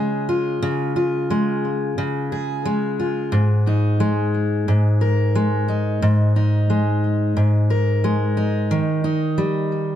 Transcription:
Already playing: C#3 G#3 F4 G#4
0.29 F4
0.62 C#3
0.96 F4
1.30 G#3
1.98 C#3
2.32 G#4
2.65 G#3
2.99 F4
3.32 G#2
3.67 D#4
4.00 G#3
4.68 G#2
5.01 A#4
5.35 G#3
5.68 D#4
6.02 G#2
6.36 D#4
6.70 G#3
7.37 G#2
7.70 A#4
8.04 G#3
8.37 D#4
8.71 D#3
9.04 D#4
9.38 G3

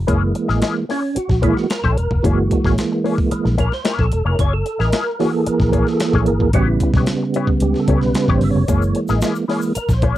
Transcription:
0.07 F#1 E3 G#3 A#3 E4 G#4 C#5, kick, closed hi-hat
0.35 muted clean electric guitar stroke, closed hi-hat
0.48 A1 A#3 E4 G#4 D#5, snare
0.61 A#3 E4 G#4 D#5, snare, closed hi-hat
0.76 muted clean electric guitar stroke
0.89 A#3 C#4 E4 G#4 C#5, snare, open hi-hat
1.02 muted clean electric guitar stroke
1.15 F#4, muted clean electric guitar stroke, muted fingered electric bass stroke, closed hi-hat
1.29 A#1, muted clean electric guitar stroke, kick, snare
1.42 E3 G#3 A#3 E4 G#4 C#5, kick, closed hi-hat
1.56 F#4, muted clean electric guitar stroke, snare
1.70 A#4, muted clean electric guitar stroke, snare, closed hi-hat
1.84 A#1 A#3 E4 G#4 A4 C#5, kick
1.97 E1 A#4, muted clean electric guitar stroke, closed hi-hat
2.11 F1, muted clean electric guitar stroke, kick
2.23 F#1 E3 G#3 A#3 E4 F#4 G#4 C#5, kick, closed hi-hat
2.51 muted clean electric guitar stroke, kick, closed hi-hat
2.65 A1 A#3 E4 G#4 C#5, kick, snare
2.78 snare, closed hi-hat
2.92 muted clean electric guitar stroke
3.04 A#3 E4 G#4 C#5, open hi-hat
3.17 muted clean electric guitar stroke, kick
3.31 E3 G#3 A#3, muted clean electric guitar stroke, muted fingered electric bass stroke, closed hi-hat
3.44 A#1, muted clean electric guitar stroke, snare
3.58 A#3 E4 G#4 A#4 C#5, kick, closed hi-hat
3.71 C5, muted clean electric guitar stroke, snare
3.85 A#3 E4 G#4 A#4 C#5, snare, closed hi-hat
3.99 A#1 A4, kick
4.12 E1, muted clean electric guitar stroke, closed hi-hat
4.25 F1 A#3 E4 G#4 A#4 C#5
4.39 F#1 A#3 E4 G#4 C#5, kick, closed hi-hat
4.53 A4
4.66 muted clean electric guitar stroke, closed hi-hat
4.79 A1 A#3 E4 G#4 A#4 D#5, snare
4.92 A#3 E4 G#4 D#5, snare, closed hi-hat
5.06 muted clean electric guitar stroke
5.19 E3 A#3 E4 F#4 G#4 C#5, snare, open hi-hat
5.33 A4
5.46 A#4, muted clean electric guitar stroke, muted fingered electric bass stroke, closed hi-hat
5.59 A#1, muted clean electric guitar stroke, kick, snare
5.72 A#3 E4 G#4 C#5, kick, closed hi-hat
5.87 A4, muted clean electric guitar stroke, snare
6.00 muted clean electric guitar stroke, snare, closed hi-hat
6.13 A#1 A#3 E4 G#4 C#5, kick
6.26 G1 A#4, closed hi-hat
6.40 G#1, muted clean electric guitar stroke, kick
6.53 A1 C#3 G3 B3 E4 F#4 G4 C#5, kick, closed hi-hat
6.67 E4
6.80 muted clean electric guitar stroke, kick, closed hi-hat
6.94 B1 B3 E4 G4 C#5, kick, snare
7.06 snare, closed hi-hat
7.23 muted clean electric guitar stroke
7.34 B3 E4 G4 C#5, closed hi-hat
7.47 muted clean electric guitar stroke, kick
7.60 C#2 G4, muted clean electric guitar stroke, closed hi-hat
7.74 muted clean electric guitar stroke, snare
7.80 A4
7.88 C#2 B3 E4 G4 C#5, kick, closed hi-hat
7.97 B4
8.01 B1, snare
8.15 muted clean electric guitar stroke, snare, closed hi-hat
8.28 A1 B3 E4 G4 C#5, kick
8.32 C5
8.41 G1 E5, muted clean electric guitar stroke, open hi-hat
8.50 C#5
8.55 F1, muted clean electric guitar stroke
8.68 F#1 E3 G#3 A#3 E4 G#4 C#5, kick, closed hi-hat, shaker
8.82 shaker
8.95 muted clean electric guitar stroke, closed hi-hat
9.08 A1 A#3 E4 G#4 D#5, snare, shaker
9.21 A#3 E4 G#4 D#5, snare, closed hi-hat, shaker
9.35 muted clean electric guitar stroke, shaker
9.48 E3 G#3 A#3 E4 G#4 C#5, snare, open hi-hat
9.62 muted clean electric guitar stroke, shaker
9.75 A#4, muted fingered electric bass stroke, muted clean electric guitar stroke, closed hi-hat, shaker
9.89 A#1, muted clean electric guitar stroke, kick, snare, shaker
9.93 C5
10.02 A#3 E4 G#4 C#5, kick, closed hi-hat
10.10 C#5

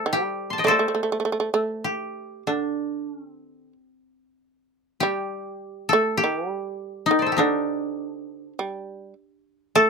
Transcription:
Already playing: A4 C5
0.06 G3
0.13 G4
0.50 A5 C6
0.58 D#5 G5
0.64 A3 C5 D5
0.68 A3 A4
0.79 A3
0.88 A3
0.95 A3
1.03 A3
1.12 A3
1.20 A3
1.25 A3
1.32 A3
1.40 A3
1.54 A3
1.84 G4
2.47 D3 D4
3.12 C#4
3.27 C4
5.00 G3 G4
5.89 A4
5.93 A3
6.17 G4
6.24 D#3
6.51 G3
7.06 D#4
7.11 D#3
7.19 C5 D5
7.26 A4
7.32 G4
7.37 D3 D4 D#4
8.59 G3
9.75 A3 A4

